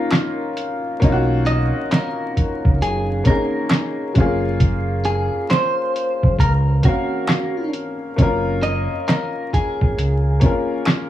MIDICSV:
0, 0, Header, 1, 5, 480
1, 0, Start_track
1, 0, Tempo, 895522
1, 544, Time_signature, 4, 2, 24, 8
1, 5947, End_track
2, 0, Start_track
2, 0, Title_t, "Clean electric guitar"
2, 0, Program_c, 0, 27
2, 0, Note_on_c, 0, 70, 81
2, 281, Note_off_c, 0, 70, 0
2, 786, Note_on_c, 0, 75, 96
2, 1032, Note_off_c, 0, 75, 0
2, 1033, Note_on_c, 0, 70, 102
2, 1487, Note_off_c, 0, 70, 0
2, 1513, Note_on_c, 0, 68, 86
2, 1751, Note_off_c, 0, 68, 0
2, 1754, Note_on_c, 0, 70, 87
2, 2207, Note_off_c, 0, 70, 0
2, 2708, Note_on_c, 0, 68, 90
2, 2950, Note_on_c, 0, 72, 104
2, 2953, Note_off_c, 0, 68, 0
2, 3428, Note_off_c, 0, 72, 0
2, 3430, Note_on_c, 0, 70, 100
2, 3494, Note_off_c, 0, 70, 0
2, 3672, Note_on_c, 0, 66, 81
2, 4127, Note_off_c, 0, 66, 0
2, 4626, Note_on_c, 0, 75, 97
2, 4869, Note_on_c, 0, 70, 96
2, 4872, Note_off_c, 0, 75, 0
2, 5090, Note_off_c, 0, 70, 0
2, 5113, Note_on_c, 0, 68, 80
2, 5947, Note_off_c, 0, 68, 0
2, 5947, End_track
3, 0, Start_track
3, 0, Title_t, "Upright piano"
3, 0, Program_c, 1, 0
3, 0, Control_c, 1, 64, 127
3, 0, Note_on_c, 1, 58, 82
3, 0, Note_on_c, 1, 61, 70
3, 0, Note_on_c, 1, 63, 70
3, 0, Note_on_c, 1, 65, 85
3, 379, Note_off_c, 1, 58, 0
3, 384, Note_off_c, 1, 61, 0
3, 389, Note_off_c, 1, 63, 0
3, 395, Note_off_c, 1, 65, 0
3, 535, Note_on_c, 1, 58, 97
3, 545, Note_on_c, 1, 61, 87
3, 558, Note_on_c, 1, 63, 91
3, 568, Note_on_c, 1, 65, 74
3, 599, Note_off_c, 1, 65, 0
3, 601, Note_on_c, 1, 66, 107
3, 1268, Note_off_c, 1, 58, 0
3, 1273, Note_off_c, 1, 61, 0
3, 1279, Note_off_c, 1, 63, 0
3, 1301, Note_off_c, 1, 66, 0
3, 1736, Note_on_c, 1, 58, 79
3, 1747, Note_on_c, 1, 61, 72
3, 1760, Note_on_c, 1, 63, 70
3, 1769, Note_on_c, 1, 68, 81
3, 2219, Note_on_c, 1, 56, 66
3, 2220, Note_off_c, 1, 58, 0
3, 2223, Note_off_c, 1, 61, 0
3, 2230, Control_c, 1, 64, 0
3, 2231, Note_on_c, 1, 61, 71
3, 2232, Note_off_c, 1, 63, 0
3, 2236, Note_off_c, 1, 68, 0
3, 2242, Note_on_c, 1, 65, 79
3, 2253, Note_on_c, 1, 68, 93
3, 2255, Note_on_c, 1, 58, 84
3, 2264, Note_off_c, 1, 56, 0
3, 2339, Control_c, 1, 64, 127
3, 3006, Note_off_c, 1, 61, 0
3, 3012, Note_off_c, 1, 65, 0
3, 3017, Note_off_c, 1, 68, 0
3, 3018, Note_off_c, 1, 58, 0
3, 3660, Note_on_c, 1, 58, 77
3, 3670, Note_on_c, 1, 61, 69
3, 3680, Note_on_c, 1, 77, 77
3, 3690, Note_on_c, 1, 70, 79
3, 4222, Note_off_c, 1, 58, 0
3, 4227, Note_off_c, 1, 61, 0
3, 4232, Note_off_c, 1, 77, 0
3, 4237, Note_off_c, 1, 70, 0
3, 4376, Note_on_c, 1, 58, 84
3, 4385, Note_on_c, 1, 61, 76
3, 4397, Note_on_c, 1, 65, 81
3, 4408, Note_on_c, 1, 70, 100
3, 5108, Note_off_c, 1, 58, 0
3, 5113, Note_off_c, 1, 61, 0
3, 5119, Note_off_c, 1, 65, 0
3, 5125, Note_off_c, 1, 70, 0
3, 5573, Note_on_c, 1, 58, 78
3, 5584, Note_on_c, 1, 61, 76
3, 5595, Note_on_c, 1, 65, 68
3, 5605, Note_on_c, 1, 70, 81
3, 5947, Note_off_c, 1, 58, 0
3, 5947, Note_off_c, 1, 61, 0
3, 5947, Note_off_c, 1, 65, 0
3, 5947, Note_off_c, 1, 70, 0
3, 5947, End_track
4, 0, Start_track
4, 0, Title_t, "Fingered electric bass"
4, 0, Program_c, 2, 33
4, 547, Note_on_c, 2, 35, 93
4, 911, Note_off_c, 2, 35, 0
4, 1421, Note_on_c, 2, 37, 83
4, 1501, Note_off_c, 2, 37, 0
4, 1507, Note_on_c, 2, 30, 107
4, 1725, Note_off_c, 2, 30, 0
4, 2229, Note_on_c, 2, 30, 87
4, 2832, Note_off_c, 2, 30, 0
4, 3342, Note_on_c, 2, 30, 93
4, 3424, Note_on_c, 2, 37, 90
4, 3432, Note_off_c, 2, 30, 0
4, 3643, Note_off_c, 2, 37, 0
4, 4386, Note_on_c, 2, 30, 93
4, 4750, Note_off_c, 2, 30, 0
4, 5260, Note_on_c, 2, 32, 84
4, 5341, Note_off_c, 2, 32, 0
4, 5345, Note_on_c, 2, 37, 99
4, 5564, Note_off_c, 2, 37, 0
4, 5947, End_track
5, 0, Start_track
5, 0, Title_t, "Drums"
5, 56, Note_on_c, 9, 26, 70
5, 63, Note_on_c, 9, 39, 94
5, 66, Note_on_c, 9, 38, 111
5, 80, Note_on_c, 9, 42, 82
5, 110, Note_off_c, 9, 26, 0
5, 117, Note_off_c, 9, 39, 0
5, 120, Note_off_c, 9, 38, 0
5, 134, Note_off_c, 9, 42, 0
5, 305, Note_on_c, 9, 42, 68
5, 359, Note_off_c, 9, 42, 0
5, 546, Note_on_c, 9, 36, 104
5, 547, Note_on_c, 9, 42, 77
5, 599, Note_off_c, 9, 36, 0
5, 600, Note_off_c, 9, 42, 0
5, 783, Note_on_c, 9, 42, 74
5, 837, Note_off_c, 9, 42, 0
5, 1026, Note_on_c, 9, 42, 86
5, 1029, Note_on_c, 9, 39, 74
5, 1031, Note_on_c, 9, 38, 105
5, 1039, Note_on_c, 9, 26, 68
5, 1079, Note_off_c, 9, 42, 0
5, 1082, Note_off_c, 9, 39, 0
5, 1085, Note_off_c, 9, 38, 0
5, 1093, Note_off_c, 9, 26, 0
5, 1270, Note_on_c, 9, 36, 68
5, 1271, Note_on_c, 9, 42, 61
5, 1324, Note_off_c, 9, 36, 0
5, 1325, Note_off_c, 9, 42, 0
5, 1420, Note_on_c, 9, 36, 92
5, 1474, Note_off_c, 9, 36, 0
5, 1512, Note_on_c, 9, 42, 87
5, 1566, Note_off_c, 9, 42, 0
5, 1742, Note_on_c, 9, 42, 71
5, 1745, Note_on_c, 9, 36, 94
5, 1795, Note_off_c, 9, 42, 0
5, 1798, Note_off_c, 9, 36, 0
5, 1980, Note_on_c, 9, 26, 71
5, 1984, Note_on_c, 9, 39, 92
5, 1987, Note_on_c, 9, 38, 109
5, 2002, Note_on_c, 9, 42, 81
5, 2033, Note_off_c, 9, 26, 0
5, 2038, Note_off_c, 9, 39, 0
5, 2041, Note_off_c, 9, 38, 0
5, 2055, Note_off_c, 9, 42, 0
5, 2225, Note_on_c, 9, 42, 67
5, 2229, Note_on_c, 9, 36, 93
5, 2279, Note_off_c, 9, 42, 0
5, 2282, Note_off_c, 9, 36, 0
5, 2466, Note_on_c, 9, 36, 103
5, 2467, Note_on_c, 9, 42, 79
5, 2520, Note_off_c, 9, 36, 0
5, 2521, Note_off_c, 9, 42, 0
5, 2705, Note_on_c, 9, 42, 69
5, 2758, Note_off_c, 9, 42, 0
5, 2948, Note_on_c, 9, 42, 85
5, 2951, Note_on_c, 9, 39, 79
5, 2953, Note_on_c, 9, 38, 106
5, 2963, Note_on_c, 9, 26, 64
5, 3001, Note_off_c, 9, 42, 0
5, 3004, Note_off_c, 9, 39, 0
5, 3007, Note_off_c, 9, 38, 0
5, 3017, Note_off_c, 9, 26, 0
5, 3194, Note_on_c, 9, 42, 65
5, 3248, Note_off_c, 9, 42, 0
5, 3341, Note_on_c, 9, 36, 90
5, 3394, Note_off_c, 9, 36, 0
5, 3423, Note_on_c, 9, 36, 88
5, 3434, Note_on_c, 9, 42, 82
5, 3477, Note_off_c, 9, 36, 0
5, 3487, Note_off_c, 9, 42, 0
5, 3662, Note_on_c, 9, 42, 73
5, 3665, Note_on_c, 9, 36, 98
5, 3716, Note_off_c, 9, 42, 0
5, 3719, Note_off_c, 9, 36, 0
5, 3899, Note_on_c, 9, 26, 77
5, 3904, Note_on_c, 9, 39, 98
5, 3907, Note_on_c, 9, 38, 116
5, 3921, Note_on_c, 9, 42, 77
5, 3952, Note_off_c, 9, 26, 0
5, 3958, Note_off_c, 9, 39, 0
5, 3960, Note_off_c, 9, 38, 0
5, 3975, Note_off_c, 9, 42, 0
5, 4146, Note_on_c, 9, 42, 65
5, 4199, Note_off_c, 9, 42, 0
5, 4385, Note_on_c, 9, 36, 109
5, 4387, Note_on_c, 9, 42, 73
5, 4439, Note_off_c, 9, 36, 0
5, 4441, Note_off_c, 9, 42, 0
5, 4625, Note_on_c, 9, 42, 75
5, 4678, Note_off_c, 9, 42, 0
5, 4867, Note_on_c, 9, 42, 84
5, 4870, Note_on_c, 9, 39, 82
5, 4872, Note_on_c, 9, 38, 99
5, 4878, Note_on_c, 9, 26, 66
5, 4920, Note_off_c, 9, 42, 0
5, 4923, Note_off_c, 9, 39, 0
5, 4926, Note_off_c, 9, 38, 0
5, 4932, Note_off_c, 9, 26, 0
5, 5111, Note_on_c, 9, 36, 65
5, 5113, Note_on_c, 9, 42, 61
5, 5164, Note_off_c, 9, 36, 0
5, 5167, Note_off_c, 9, 42, 0
5, 5260, Note_on_c, 9, 36, 93
5, 5314, Note_off_c, 9, 36, 0
5, 5352, Note_on_c, 9, 42, 81
5, 5406, Note_off_c, 9, 42, 0
5, 5580, Note_on_c, 9, 42, 72
5, 5584, Note_on_c, 9, 36, 100
5, 5634, Note_off_c, 9, 42, 0
5, 5638, Note_off_c, 9, 36, 0
5, 5817, Note_on_c, 9, 26, 73
5, 5825, Note_on_c, 9, 39, 94
5, 5827, Note_on_c, 9, 38, 110
5, 5842, Note_on_c, 9, 42, 83
5, 5871, Note_off_c, 9, 26, 0
5, 5878, Note_off_c, 9, 39, 0
5, 5881, Note_off_c, 9, 38, 0
5, 5895, Note_off_c, 9, 42, 0
5, 5947, End_track
0, 0, End_of_file